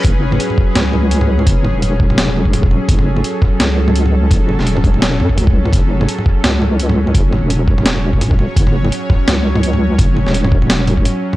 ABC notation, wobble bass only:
X:1
M:4/4
L:1/16
Q:"Swing 16ths" 1/4=169
K:F#m
V:1 name="Wobble bass" clef=bass
F,,,4 z4 C,,8 | F,,,3 E,,,12 z | F,,,4 z4 C,,8 | F,,,3 E,,,6- E,,, F,,2 C,,4 |
F,,,4 z4 C,,8 | F,,,3 E,,,12 z | F,,,4 z4 C,,8 | F,,,3 E,,,8- E,,, z4 |]